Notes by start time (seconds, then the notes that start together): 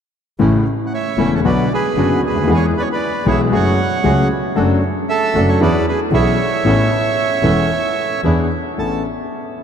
0.39 A1 A2 C#3 E3 A3 C#4 E4
0.87 F#5
0.94 C#5 E5
1.18 E1 E2 C#3 E3 A3 C#4 E4
1.35 A4 C#5
1.44 B1 B2 D3 F#3 B3 D4 F#4 B4 D5
1.73 G#4 B4
1.96 F#1 F#2 D3 F#3 B3 D4 F#4
2.23 D2 G#4
2.29 C#2 B4
2.35 D2
2.42 D#2
2.47 E2 E3 G#3 B3 E4 G#4
2.54 G#4 C#5
2.77 B4 D5
2.82 C#5
2.92 B4 D5
3.26 B1 B2 E3 G#3 B3 E4 G#4 C#5
3.30 E5
3.52 F#1 F#2 F#3 A3 C#4 F#4 G#4 C#5
3.56 F#5
4.03 C#2 C#3 F#3 A3 C#4 F#4 G#4
4.56 F#1 F#2 F#3 A3 D4 F#4 A4
5.09 A4 E5
5.35 F#1 F#2 F#3 A3 D4 F#4 A4
5.48 A4 C#5
5.60 E2 E3 B3 C#4 E4 G#4 B4 D5
5.89 G#4 B4
6.11 B1 B2 E3 B3 C#4 E4 G#4 C#5 E5
6.64 A1 A2 E3 B3 C#4 A4
7.43 E1 E2 E3 B3 C#4 A4
8.24 E2 E3 B3 D4 E4 G#4
8.77 A1 B3 C#4 A4 A5